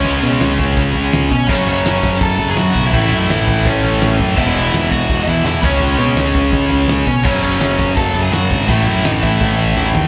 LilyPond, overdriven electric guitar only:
\new Staff \with { instrumentName = "Overdriven electric guitar" } { \time 4/4 \key cis \minor \tempo 4 = 167 << { cis''2.~ cis''8 r8 | cis''8 cis''4. a''8. gis''16 fis''8. e''16~ | e''4 e''4 cis''4. r8 | e''4. fis''8.~ fis''32 dis''32 e''8 e''8 cis''8~ |
cis''2.~ cis''8 r8 | cis''8 cis''4. a''8. gis''16 fis''4 | e''4 dis''8 e''2 r8 | } \\ { cis'2.~ cis'8 r8 | cis'8 cis'4. a'8. gis'16 fis'8. e'16~ | e'4 e'4 cis'4. r8 | e'4. fis'4 e'8 e'8 cis'8~ |
cis'2.~ cis'8 r8 | cis'8 cis'4. a'8. gis'16 fis'4 | e'4 dis'8 e'2 r8 | } >> }